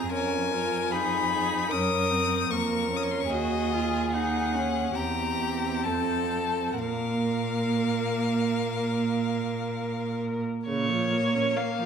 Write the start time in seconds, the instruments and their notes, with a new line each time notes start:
Already playing: cello F2, viola C4, violin A#5
0.12 cello F2, viola C#4, violin A#4 G#5
0.52 viola F4
0.91 viola D#4, violin G#4 B5
1.31 violin G#4
1.71 cello F#2, viola C#4, violin A#4 D#6
2.10 viola C4
2.50 cello F2, viola A#3, violin A#4 C#6
2.91 viola C#4
2.97 violin D#6
3.03 violin C#6
3.11 violin C6
3.20 violin C#6
3.29 cello D#2, viola F#4, violin G#4 D#5
3.72 viola F4
4.13 viola D#4, violin F#5
4.54 viola C#4
4.95 cello E2, viola C4, violin G4 A#5
5.83 cello F2, violin A4 A5
6.72 violin F#5
6.79 cello A#2, viola A#3, violin A#4 F5
10.67 cello A#2, viola C#3, violin A#4 C#5
10.89 viola F3
11.11 viola A#3
11.34 viola C#4
11.56 viola A#3, violin F5
11.79 viola F3